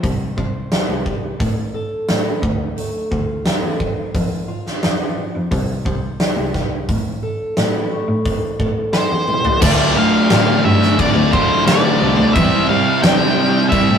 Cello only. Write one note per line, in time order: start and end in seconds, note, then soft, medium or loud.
0.04 0.31 C2 medium
0.38 0.79 C2 medium
0.89 1.31 C2 medium
1.40 1.68 A2 medium
2.09 2.36 A2 medium
2.43 2.98 D2 medium
3.12 3.53 D2 medium
3.62 4.04 E2 medium
4.15 4.42 F2 medium
4.83 5.25 F2 medium
5.35 5.49 F2 medium
5.51 5.79 C2 medium
5.86 6.28 C2 medium
6.37 6.78 C2 medium
6.89 7.16 A2 medium
7.57 7.99 A2 medium
8.08 8.36 A2 medium
8.60 9.02 A2 medium
9.12 9.53 E2 medium
9.62 9.90 D2 loud
10.31 10.58 A2 loud
10.65 10.93 G2 medium
11.16 11.44 D2 medium
12.01 12.18 C2 medium
12.18 12.32 D2 medium
12.36 12.63 E2 medium
13.03 13.31 E2 medium
13.89 13.98 A2 medium